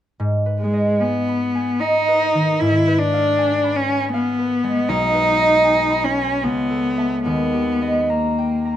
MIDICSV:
0, 0, Header, 1, 3, 480
1, 0, Start_track
1, 0, Key_signature, 5, "minor"
1, 0, Tempo, 805369
1, 114, Time_signature, 3, 2, 24, 8
1, 1552, Tempo, 767263
1, 3952, Tempo, 827586
1, 5301, End_track
2, 0, Start_track
2, 0, Title_t, "Harp"
2, 0, Program_c, 0, 46
2, 117, Note_on_c, 0, 44, 33
2, 273, Note_on_c, 0, 71, 23
2, 438, Note_on_c, 0, 75, 26
2, 599, Note_on_c, 0, 80, 24
2, 765, Note_on_c, 0, 83, 29
2, 918, Note_off_c, 0, 80, 0
2, 925, Note_on_c, 0, 80, 29
2, 1075, Note_off_c, 0, 75, 0
2, 1083, Note_on_c, 0, 75, 29
2, 1233, Note_off_c, 0, 71, 0
2, 1240, Note_on_c, 0, 71, 26
2, 1399, Note_on_c, 0, 51, 25
2, 1549, Note_off_c, 0, 44, 0
2, 1556, Note_on_c, 0, 44, 34
2, 1573, Note_off_c, 0, 51, 0
2, 1573, Note_off_c, 0, 75, 0
2, 1713, Note_off_c, 0, 71, 0
2, 1720, Note_on_c, 0, 71, 29
2, 1883, Note_on_c, 0, 77, 28
2, 2032, Note_off_c, 0, 80, 0
2, 2040, Note_on_c, 0, 80, 29
2, 2193, Note_off_c, 0, 83, 0
2, 2200, Note_on_c, 0, 83, 30
2, 2349, Note_off_c, 0, 80, 0
2, 2357, Note_on_c, 0, 80, 37
2, 2503, Note_off_c, 0, 77, 0
2, 2510, Note_on_c, 0, 77, 33
2, 2660, Note_off_c, 0, 71, 0
2, 2668, Note_on_c, 0, 71, 30
2, 2823, Note_on_c, 0, 56, 29
2, 2982, Note_on_c, 0, 35, 36
2, 3002, Note_off_c, 0, 77, 0
2, 3005, Note_off_c, 0, 44, 0
2, 3131, Note_off_c, 0, 71, 0
2, 3139, Note_on_c, 0, 71, 29
2, 3292, Note_on_c, 0, 75, 29
2, 3446, Note_off_c, 0, 80, 0
2, 3453, Note_on_c, 0, 80, 28
2, 3605, Note_off_c, 0, 83, 0
2, 3612, Note_on_c, 0, 83, 30
2, 3775, Note_off_c, 0, 80, 0
2, 3783, Note_on_c, 0, 80, 31
2, 3949, Note_on_c, 0, 37, 36
2, 3966, Note_off_c, 0, 83, 0
2, 3968, Note_off_c, 0, 75, 0
2, 3969, Note_off_c, 0, 35, 0
2, 3969, Note_off_c, 0, 56, 0
2, 3969, Note_off_c, 0, 71, 0
2, 3969, Note_off_c, 0, 80, 0
2, 4104, Note_on_c, 0, 69, 24
2, 4262, Note_on_c, 0, 76, 23
2, 4267, Note_on_c, 0, 81, 26
2, 4425, Note_on_c, 0, 39, 36
2, 4443, Note_off_c, 0, 69, 0
2, 4444, Note_off_c, 0, 37, 0
2, 4444, Note_off_c, 0, 76, 0
2, 4445, Note_off_c, 0, 81, 0
2, 4588, Note_on_c, 0, 67, 23
2, 4752, Note_on_c, 0, 75, 28
2, 4913, Note_on_c, 0, 82, 26
2, 5079, Note_on_c, 0, 79, 28
2, 5227, Note_off_c, 0, 82, 0
2, 5234, Note_on_c, 0, 82, 31
2, 5301, Note_off_c, 0, 39, 0
2, 5301, Note_off_c, 0, 67, 0
2, 5301, Note_off_c, 0, 75, 0
2, 5301, Note_off_c, 0, 79, 0
2, 5301, Note_off_c, 0, 82, 0
2, 5301, End_track
3, 0, Start_track
3, 0, Title_t, "Cello"
3, 0, Program_c, 1, 42
3, 357, Note_on_c, 1, 56, 42
3, 597, Note_on_c, 1, 59, 47
3, 606, Note_off_c, 1, 56, 0
3, 1074, Note_on_c, 1, 63, 59
3, 1083, Note_off_c, 1, 59, 0
3, 1547, Note_on_c, 1, 64, 53
3, 1556, Note_off_c, 1, 63, 0
3, 1792, Note_on_c, 1, 62, 60
3, 1801, Note_off_c, 1, 64, 0
3, 2274, Note_on_c, 1, 61, 60
3, 2284, Note_off_c, 1, 62, 0
3, 2506, Note_off_c, 1, 61, 0
3, 2510, Note_on_c, 1, 59, 59
3, 2980, Note_on_c, 1, 63, 67
3, 2989, Note_off_c, 1, 59, 0
3, 3702, Note_on_c, 1, 61, 54
3, 3712, Note_off_c, 1, 63, 0
3, 3949, Note_on_c, 1, 59, 54
3, 3958, Note_off_c, 1, 61, 0
3, 4419, Note_off_c, 1, 59, 0
3, 4422, Note_on_c, 1, 59, 53
3, 4910, Note_on_c, 1, 58, 39
3, 4918, Note_off_c, 1, 59, 0
3, 5301, Note_off_c, 1, 58, 0
3, 5301, End_track
0, 0, End_of_file